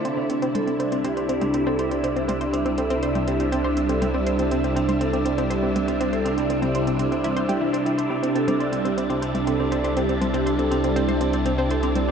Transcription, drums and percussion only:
0.05 closed hi-hat medium
0.30 closed hi-hat medium
0.42 closed hi-hat soft
0.55 closed hi-hat medium
0.55 high tom soft
0.67 closed hi-hat soft
0.80 closed hi-hat medium
0.92 closed hi-hat soft
1.04 closed hi-hat medium
1.17 closed hi-hat soft
1.29 closed hi-hat medium
1.42 closed hi-hat soft
1.42 high tom soft
1.54 closed hi-hat medium
1.79 closed hi-hat medium
1.91 closed hi-hat soft
2.04 closed hi-hat medium
2.16 closed hi-hat soft
2.29 closed hi-hat medium
2.29 high tom soft
2.41 closed hi-hat soft
2.54 closed hi-hat medium
2.66 closed hi-hat soft
2.78 closed hi-hat medium
2.90 closed hi-hat soft
3.03 closed hi-hat medium
3.15 closed hi-hat soft
3.15 high tom soft
3.28 closed hi-hat medium
3.40 closed hi-hat soft
3.52 closed hi-hat medium
3.77 closed hi-hat medium
3.89 closed hi-hat medium
4.02 closed hi-hat medium
4.02 high tom soft
4.27 closed hi-hat medium
4.39 closed hi-hat medium
4.51 closed hi-hat medium
4.64 closed hi-hat soft
4.76 closed hi-hat medium
4.89 closed hi-hat medium
4.89 high tom soft
5.01 closed hi-hat medium
5.14 closed hi-hat soft
5.26 closed hi-hat medium
5.38 closed hi-hat medium
5.51 closed hi-hat medium
5.76 closed hi-hat medium
5.76 high tom soft
5.88 closed hi-hat medium
6.01 closed hi-hat medium
6.13 closed hi-hat soft
6.26 closed hi-hat medium
6.38 closed hi-hat medium
6.50 closed hi-hat medium
6.63 closed hi-hat soft
6.63 high tom soft
6.75 closed hi-hat medium
6.87 closed hi-hat soft
6.99 closed hi-hat medium
7.12 closed hi-hat soft
7.25 closed hi-hat medium
7.37 closed hi-hat soft
7.49 closed hi-hat medium
7.49 high tom soft
7.74 closed hi-hat medium
7.87 closed hi-hat soft
7.99 closed hi-hat medium
8.24 closed hi-hat medium
8.36 closed hi-hat medium
8.48 closed hi-hat medium
8.48 high tom soft
8.61 closed hi-hat soft
8.73 closed hi-hat medium
8.85 closed hi-hat soft
8.98 closed hi-hat medium
9.10 closed hi-hat soft
9.23 closed hi-hat medium
9.35 closed hi-hat medium
9.35 high tom soft
9.47 closed hi-hat medium
9.72 closed hi-hat medium
9.85 closed hi-hat soft
9.97 closed hi-hat medium
10.09 closed hi-hat soft
10.22 closed hi-hat medium
10.22 high tom soft
10.34 closed hi-hat soft
10.47 closed hi-hat medium
10.59 closed hi-hat soft
10.72 closed hi-hat medium
10.84 closed hi-hat soft
10.96 closed hi-hat medium
11.09 closed hi-hat soft
11.09 high tom soft
11.21 closed hi-hat medium
11.33 closed hi-hat soft
11.46 closed hi-hat medium
11.71 closed hi-hat medium
11.83 closed hi-hat soft
11.95 closed hi-hat medium
11.95 high tom soft

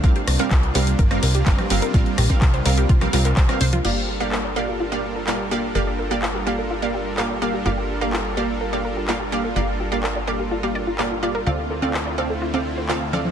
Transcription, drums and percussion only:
0.04 kick loud
0.04 closed hi-hat soft
0.16 closed hi-hat soft
0.27 cross-stick medium
0.27 open hi-hat loud
0.39 closed hi-hat medium
0.39 high conga medium
0.51 kick loud
0.51 clap loud
0.51 closed hi-hat medium
0.63 closed hi-hat soft
0.75 open hi-hat medium
0.87 closed hi-hat medium
0.99 kick loud
0.99 closed hi-hat medium
1.11 cross-stick medium
1.11 closed hi-hat soft
1.11 high conga medium
1.23 open hi-hat medium
1.35 closed hi-hat medium
1.46 kick loud
1.46 clap loud
1.46 closed hi-hat medium
1.58 cross-stick medium
1.58 closed hi-hat soft
1.58 low conga medium
1.70 open hi-hat medium
1.70 high conga medium
1.82 closed hi-hat medium
1.94 kick loud
1.94 closed hi-hat medium
2.06 closed hi-hat soft
2.18 cross-stick medium
2.18 open hi-hat loud
2.30 kick medium
2.30 closed hi-hat medium
2.30 high conga medium
2.42 kick loud
2.42 clap loud
2.42 closed hi-hat medium
2.54 closed hi-hat soft
2.66 open hi-hat medium
2.78 closed hi-hat medium
2.89 kick loud
2.89 closed hi-hat medium
3.01 cross-stick medium
3.01 closed hi-hat soft
3.01 high conga medium
3.01 low conga medium
3.13 open hi-hat loud
3.25 clap soft
3.25 closed hi-hat medium
3.37 kick loud
3.37 clap loud
3.37 closed hi-hat medium
3.49 cross-stick medium
3.49 closed hi-hat soft
3.61 open hi-hat medium
3.61 high conga loud
3.73 closed hi-hat medium
3.73 low conga medium
3.85 crash medium
4.32 clap loud
5.27 clap loud
6.22 clap loud
7.18 clap loud
8.13 clap loud
9.08 clap loud
10.03 clap loud
10.99 clap loud
11.82 high conga medium
11.94 clap loud
12.54 high conga medium
12.89 clap loud
13.13 high conga medium
13.13 low conga medium
13.25 low conga medium

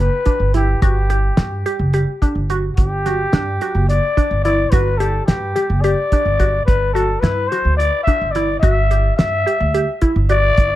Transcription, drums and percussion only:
0.26 kick medium
0.26 closed hi-hat medium
0.54 snare soft
0.54 closed hi-hat medium
0.82 kick loud
0.82 closed hi-hat medium
1.10 closed hi-hat medium
1.37 snare loud
1.37 closed hi-hat medium
1.66 closed hi-hat medium
1.93 closed hi-hat medium
2.22 kick medium
2.22 closed hi-hat medium
2.50 closed hi-hat medium
2.77 kick loud
2.77 closed hi-hat medium
3.06 snare soft
3.06 closed hi-hat medium
3.33 snare loud
3.33 closed hi-hat medium
3.61 closed hi-hat medium
3.89 closed hi-hat medium
4.17 kick medium
4.17 closed hi-hat medium
4.45 snare soft
4.45 closed hi-hat medium
4.72 kick loud
4.72 closed hi-hat medium
5.00 closed hi-hat medium
5.28 snare loud
5.28 closed hi-hat medium
5.56 snare soft
5.56 closed hi-hat medium
5.84 closed hi-hat medium
6.12 kick medium
6.12 closed hi-hat medium
6.40 kick medium
6.40 snare soft
6.40 closed hi-hat medium
6.68 kick loud
6.68 closed hi-hat medium
6.96 closed hi-hat medium
7.24 snare loud
7.24 closed hi-hat medium
7.52 snare soft
7.52 closed hi-hat soft
7.80 closed hi-hat medium
8.07 kick medium
8.07 closed hi-hat medium
8.35 snare soft
8.35 closed hi-hat medium
8.63 kick loud
8.63 closed hi-hat medium
8.91 closed hi-hat medium
9.19 snare loud
9.19 closed hi-hat medium
9.47 closed hi-hat medium
9.74 closed hi-hat medium
10.02 kick medium
10.02 closed hi-hat medium
10.29 closed hi-hat medium
10.57 kick loud
10.57 closed hi-hat medium

